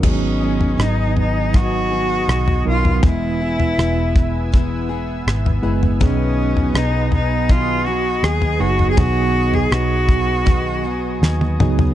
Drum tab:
CC |x---------------|----------------|----------------|----------------|
SD |----r-------r---|----r-------r---|----r-------r---|----r-------o---|
T1 |----------------|----------------|----------------|-------------o--|
T2 |----------------|----------------|----------------|--------------o-|
FT |o--o--o------o-o|o--o--o------o-o|o--o--o------o-o|o--o--o-o------o|
BD |o-------o-------|o-----o-o-------|o-------o-------|o-----o-o-------|